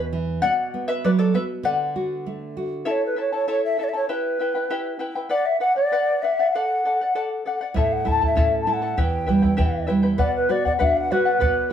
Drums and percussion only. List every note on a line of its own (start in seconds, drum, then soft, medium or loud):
7.77 bombo low medium
8.07 bombo low medium
8.23 bombo low medium
8.37 bombo low medium
8.98 bombo low medium
9.28 bombo low soft
9.43 bombo low soft
9.59 bombo low medium
10.19 bombo low medium
10.66 bombo low soft
10.81 bombo low medium
11.42 bombo low medium